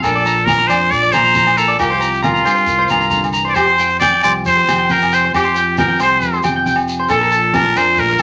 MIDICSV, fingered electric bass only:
0, 0, Header, 1, 2, 480
1, 0, Start_track
1, 0, Key_signature, -1, "major"
1, 0, Tempo, 441501
1, 34, Time_signature, 4, 2, 24, 8
1, 8938, End_track
2, 0, Start_track
2, 0, Title_t, "Fingered electric bass"
2, 0, Program_c, 0, 33
2, 34, Note_on_c, 0, 34, 83
2, 717, Note_off_c, 0, 34, 0
2, 759, Note_on_c, 0, 41, 80
2, 985, Note_off_c, 0, 41, 0
2, 993, Note_on_c, 0, 34, 88
2, 1222, Note_off_c, 0, 34, 0
2, 1251, Note_on_c, 0, 34, 82
2, 1926, Note_off_c, 0, 34, 0
2, 1957, Note_on_c, 0, 36, 85
2, 2640, Note_off_c, 0, 36, 0
2, 2683, Note_on_c, 0, 43, 73
2, 2907, Note_off_c, 0, 43, 0
2, 2924, Note_on_c, 0, 36, 88
2, 3148, Note_off_c, 0, 36, 0
2, 3157, Note_on_c, 0, 36, 77
2, 3840, Note_off_c, 0, 36, 0
2, 3879, Note_on_c, 0, 41, 84
2, 4560, Note_off_c, 0, 41, 0
2, 4610, Note_on_c, 0, 36, 77
2, 4831, Note_off_c, 0, 36, 0
2, 4840, Note_on_c, 0, 41, 89
2, 5066, Note_off_c, 0, 41, 0
2, 5085, Note_on_c, 0, 41, 80
2, 5764, Note_off_c, 0, 41, 0
2, 5801, Note_on_c, 0, 41, 90
2, 6482, Note_off_c, 0, 41, 0
2, 6524, Note_on_c, 0, 36, 80
2, 6748, Note_off_c, 0, 36, 0
2, 6757, Note_on_c, 0, 41, 93
2, 6985, Note_off_c, 0, 41, 0
2, 7000, Note_on_c, 0, 41, 73
2, 7681, Note_off_c, 0, 41, 0
2, 7720, Note_on_c, 0, 34, 91
2, 8401, Note_off_c, 0, 34, 0
2, 8434, Note_on_c, 0, 41, 78
2, 8663, Note_off_c, 0, 41, 0
2, 8684, Note_on_c, 0, 34, 87
2, 8908, Note_off_c, 0, 34, 0
2, 8938, End_track
0, 0, End_of_file